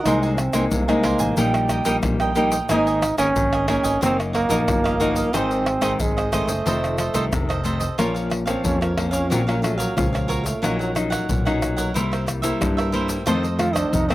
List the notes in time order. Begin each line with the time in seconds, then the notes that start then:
0.03 C2 C3 G#3 A#3 D#4 A#4 C5, pandeiro, tamborim, shaker, surdo
0.08 G#5
0.21 D#4 G#5, pandeiro, shaker
0.25 C5
0.37 C4, pandeiro, tamborim, shaker
0.53 C2 G#3 A#3 D#4 A#4 C5 G#5, pandeiro, tamborim, shaker, surdo
0.71 C2 C3 A#3, pandeiro, shaker, surdo
0.88 G#3 A#3 D#4 C5 G#5, pandeiro, tamborim, shaker
1.03 A#4 C5 G#5, pandeiro, tamborim
1.19 A1 C5 G#5, pandeiro, shaker, surdo
1.37 A#1 A#2 G3 A#3 D#4 G4 A#4 D#5 G5, pandeiro, shaker, surdo
1.54 pandeiro, tamborim, shaker
1.69 G4 A#4 D#5 G5, pandeiro, tamborim, shaker, surdo
1.85 A#1 G3 A#3 D#4 G4 A#4 D#5 G5, pandeiro, shaker, surdo
2.03 A#1 A#2, pandeiro, tamborim, shaker, surdo
2.20 A#4 D#5 G5, pandeiro, tamborim, shaker
2.35 G3 A#3 D#4 G4 A#4 D#5 G5, pandeiro, shaker
2.52 A#4 D#5 G5, pandeiro, shaker, surdo
2.69 G#1 G#2 D#3 A#3 D#4 G#4 A#4 D#5 G#5, pandeiro, tamborim, shaker, surdo
2.87 A#4 D#5 G#5, pandeiro, shaker
3.02 pandeiro, tamborim, shaker
3.18 G#1 D#3 A#3 C#4 D#4 G#4 A#4 D#5 G#5, pandeiro, tamborim, shaker, surdo
3.36 G#1 D#3, pandeiro, shaker, surdo
3.53 A#4 D#5 G#5, pandeiro, tamborim, shaker
3.68 D#3 A#3 C#4 D#4 G#4 A#4 D#5 G#5, pandeiro, tamborim
3.83 G#1 A#4 D#5 G#5, pandeiro, shaker, surdo
4.01 F#1 F#2 A#3 C4 D#4 F#4 A#4 D#5 F5, pandeiro, shaker, surdo
4.20 pandeiro, tamborim, shaker
4.33 A#3 F#4 A#4 D#5 F5, pandeiro, tamborim, surdo
4.49 A#1 F3 A#3 D#4 F#4 A#4 D#5 F5, pandeiro, shaker, surdo
4.67 G1 F#2, pandeiro, tamborim, shaker, surdo
4.84 A#4 D#5 F5, pandeiro, tamborim, shaker
5.00 F3 A#3 D#4 F#4 A#4 D#5 F5, pandeiro, shaker
5.15 A#4 D#5 F5, pandeiro, shaker, surdo
5.33 G#1 G#2 D#3 G#3 C4 D#4 G#4 C5 D#5, pandeiro, tamborim, shaker, surdo
5.51 G#4 C5 D#5, pandeiro, shaker
5.66 pandeiro, tamborim
5.81 G#1 D#3 G#3 C4 D#4 G#4 C5 D#5, pandeiro, tamborim, shaker, surdo
6.00 G#1 D#3 G#3, pandeiro, shaker, surdo
6.17 G#4 C5 D#5, pandeiro, tamborim, shaker
6.32 D#3 G#3 A3 C4 D#4 G#4 C5 D#5, pandeiro, tamborim, shaker
6.47 F#1 G#4 C5 D#5, pandeiro, shaker, surdo
6.66 F1 F2 D#3 A3 C4 F4 A4 C5 D#5, pandeiro, shaker, surdo
6.84 pandeiro, tamborim, shaker
6.98 F4 A4 C5 D#5, pandeiro, tamborim, shaker
7.14 C2 D#3 A3 C4 F4 A4 C5 D#5, pandeiro, shaker, surdo
7.32 F1 C3, pandeiro, tamborim, shaker, surdo
7.49 A4 C5 D#5, pandeiro, tamborim, shaker
7.64 D#3 A3 C4 F4 A4 C5 D#5, pandeiro, shaker
7.80 A4 C5 D#5, pandeiro, shaker, surdo
7.98 A#1 A#2 F3 A#3 C#4 F4 A#4 C#5 F5, pandeiro, tamborim, shaker, surdo
8.14 A#4 C#5 F5, pandeiro, shaker
8.30 muted cavaquinho stroke, pandeiro, tamborim
8.46 F3 A#3 C4 C#4 A#4 C#5 F5, pandeiro, tamborim, shaker, surdo
8.64 F2 C#4, pandeiro, shaker, surdo
8.81 F3 A#4 C#5 F5, pandeiro, tamborim, shaker
8.96 F3 A#3 C#4, pandeiro, tamborim
9.11 C#4 A#4 C#5 F5, pandeiro, shaker, surdo
9.30 A#1 A#2 F#3 C4 C#4 F4 F#4 A#4 C#5 F5, pandeiro, shaker, surdo
9.47 F#3 A#3 C#4 F4 A#4 C#5 F5, pandeiro, tamborim, shaker
9.62 F#3 A3 C#4 F4, muted cavaquinho stroke, pandeiro, tamborim, shaker, surdo
9.78 F#3 A#4 C#5 F5, pandeiro, shaker, surdo
9.96 C#2 A#2 F3 C#4 F4, pandeiro, tamborim, shaker, surdo
10.13 A#4 C#5 F5, pandeiro, tamborim, shaker
10.28 F#4 A#4 C#5 F5, pandeiro, shaker
10.44 A3 A#4 C#5 F5, pandeiro, shaker, surdo
10.62 A#1 A#2 F#3 A#3 C#4 D#4 A#4 C#5 F#5, pandeiro, tamborim, shaker, surdo
10.79 F#3 A#4 C#5 F#5, pandeiro, shaker
10.95 F#3 C#4 D#4, muted cavaquinho stroke, pandeiro, tamborim, shaker
11.10 A#4 C#5 F#5, pandeiro, tamborim, shaker, surdo
11.29 B1 A#2, pandeiro, shaker, surdo
11.45 F#3 C#4 D#4 A#4 C#5 F#5, pandeiro, tamborim, shaker
11.62 pandeiro, tamborim, shaker
11.77 A#4 C#5 F#5, pandeiro, shaker, surdo
11.94 C2 C3 G3 A#3 E4 A#4 C5 E5, pandeiro, shaker, surdo
12.12 A#4 C5 E5, pandeiro, tamborim, shaker
12.26 muted cavaquinho stroke, pandeiro, tamborim, shaker, surdo
12.42 G3 A#3 E4 A#4 C5 E5, pandeiro, shaker, surdo
12.61 G2, pandeiro, tamborim, shaker, surdo
12.77 A#4 C5 E5, pandeiro, tamborim, shaker
12.92 G3 A#3 E4 A#4 C5 E5, pandeiro
13.08 A#4 C5 E5, pandeiro, shaker, surdo
13.26 F2 D#3 A3 C4 F4 A4 C5 D#5, pandeiro, tamborim, shaker, surdo
13.43 A4 C5 D#5, pandeiro, shaker
13.59 D#3 A3 C4 F4, muted cavaquinho stroke, pandeiro, tamborim
13.73 D4 A4 C5 D#5, pandeiro, tamborim, shaker, surdo
13.93 F2 C3 D#4, pandeiro, shaker, surdo
14.09 D#3 A3 C4 A4 C5 D#5, pandeiro, tamborim, shaker